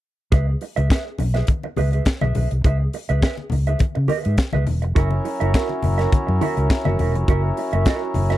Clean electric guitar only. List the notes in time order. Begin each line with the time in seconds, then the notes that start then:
0.32 G#4 B4 E5
0.48 muted clean electric guitar stroke
0.62 muted clean electric guitar stroke
0.76 G#4 B4 E5
0.90 G#4 B4 E5
1.06 muted clean electric guitar stroke
1.19 muted clean electric guitar stroke
1.34 G#4 B4 E5
1.48 muted clean electric guitar stroke
1.64 muted clean electric guitar stroke
1.77 G#4 B4 E5
1.92 G#4 B4 E5
2.22 G#4 B4 E5
2.36 G#4 B4 E5
2.51 muted clean electric guitar stroke
2.64 G#4 B4 E5
2.80 muted clean electric guitar stroke
2.94 muted clean electric guitar stroke
3.09 G#4 B4 E5
3.23 G#4 B4 E5
3.38 muted clean electric guitar stroke
3.51 muted clean electric guitar stroke
3.67 G#4 B4 E5
3.81 muted clean electric guitar stroke
3.95 muted clean electric guitar stroke
4.08 G#4 B4 E5
4.24 G#4 B4 E5
4.38 muted clean electric guitar stroke
4.53 G#4 B4 E5
4.67 muted clean electric guitar stroke
4.82 muted clean electric guitar stroke
4.95 F#4 A#4 E5
5.11 muted clean electric guitar stroke
5.25 muted clean electric guitar stroke
5.40 F#4 A#4 E5
5.54 F#4 A#4 E5
5.70 muted clean electric guitar stroke
5.83 muted clean electric guitar stroke
5.98 F#4 A#4 E5
6.12 muted clean electric guitar stroke
6.27 muted clean electric guitar stroke
6.41 F#4 A#4 E5
6.56 F#4 A#4 E5
6.85 F#4 A#4 E5
6.99 F#4 A#4 E5
7.15 muted clean electric guitar stroke
7.28 F#4 A#4 E5
7.44 muted clean electric guitar stroke
7.58 muted clean electric guitar stroke
7.73 F#4 A#4 E5
7.86 F#4 A#4 E5
8.02 muted clean electric guitar stroke
8.15 muted clean electric guitar stroke
8.30 F#4 A#4 E5